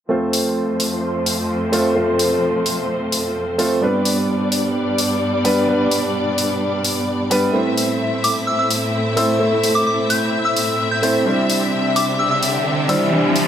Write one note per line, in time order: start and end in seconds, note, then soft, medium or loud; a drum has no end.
0.09 3.78 F2 medium
0.09 3.78 F3 medium
0.09 1.69 A3 medium
0.09 3.78 A3 medium
0.09 1.70 C4 medium
0.09 3.78 C4 medium
0.09 1.70 F4 medium
0.09 3.78 C5 medium
0.09 1.71 C5 medium
0.33 open hi-hat loud
0.80 open hi-hat medium
1.26 open hi-hat loud
1.72 1.93 A3 medium
1.72 1.93 C4 medium
1.72 1.93 F4 medium
1.72 1.94 C5 loud
1.72 open hi-hat medium
1.95 3.55 A3 medium
1.95 3.56 C4 medium
1.95 3.56 F4 medium
1.95 3.57 C5 medium
2.19 open hi-hat loud
2.66 open hi-hat loud
3.12 open hi-hat loud
3.58 3.79 A3 medium
3.58 3.79 C4 medium
3.58 3.79 F4 medium
3.58 3.80 C5 loud
3.58 open hi-hat medium
3.81 7.50 G2 medium
3.81 5.42 G3 medium
3.81 7.50 G3 medium
3.81 5.42 B3 medium
3.81 7.50 B3 medium
3.81 7.51 D4 medium
3.81 5.42 D4 medium
3.81 5.43 B4 medium
3.81 7.51 D5 medium
4.05 open hi-hat loud
4.52 open hi-hat loud
4.98 open hi-hat loud
5.44 5.65 G3 medium
5.44 5.65 B3 medium
5.44 5.65 D4 medium
5.44 5.66 B4 loud
5.44 open hi-hat loud
5.67 7.28 G3 medium
5.67 7.28 B3 medium
5.67 7.28 D4 medium
5.67 7.29 B4 medium
5.91 open hi-hat loud
6.38 open hi-hat loud
6.84 open hi-hat loud
7.30 7.51 G3 medium
7.30 7.51 B3 medium
7.30 7.52 D4 medium
7.30 7.52 B4 loud
7.30 open hi-hat loud
7.53 11.23 A2 medium
7.53 9.14 A3 medium
7.53 11.23 A3 medium
7.53 9.14 C4 medium
7.53 13.48 C4 medium
7.53 11.23 E4 medium
7.53 9.14 E4 medium
7.53 9.15 C5 medium
7.53 13.48 E5 medium
7.78 open hi-hat loud
8.24 8.42 D6 medium
8.24 open hi-hat medium
8.47 8.55 E6 medium
8.59 8.66 E6 medium
8.71 open hi-hat loud
9.16 9.37 A3 medium
9.16 9.37 C4 medium
9.16 9.38 E4 medium
9.16 9.38 C5 loud
9.16 9.35 E6 medium
9.16 open hi-hat medium
9.39 11.00 A3 medium
9.39 11.00 C4 medium
9.39 11.00 E4 medium
9.39 11.01 C5 medium
9.64 open hi-hat loud
9.75 9.83 D6 medium
9.87 9.94 D6 medium
10.10 10.28 G6 medium
10.10 open hi-hat loud
10.45 10.80 E6 medium
10.57 open hi-hat loud
10.91 10.99 G6 medium
11.02 11.23 A3 medium
11.02 11.23 C4 medium
11.02 11.24 E4 medium
11.02 11.24 C5 loud
11.02 11.10 G6 medium
11.02 open hi-hat loud
11.25 13.48 C3 medium
11.25 12.86 G3 medium
11.25 12.86 D4 medium
11.25 13.48 D4 medium
11.25 12.86 E4 medium
11.25 13.48 G4 medium
11.25 12.87 C5 medium
11.25 riser medium
11.50 open hi-hat loud
11.96 12.14 D6 medium
11.96 open hi-hat medium
12.19 12.27 E6 medium
12.31 12.38 E6 medium
12.43 open hi-hat loud
12.88 13.09 G3 medium
12.88 13.09 D4 medium
12.88 13.10 E4 medium
12.88 13.10 C5 loud
12.88 13.07 E6 medium
12.88 open hi-hat medium
13.11 13.48 G3 medium
13.11 13.48 D4 medium
13.11 13.48 E4 medium
13.11 13.48 C5 medium
13.36 open hi-hat loud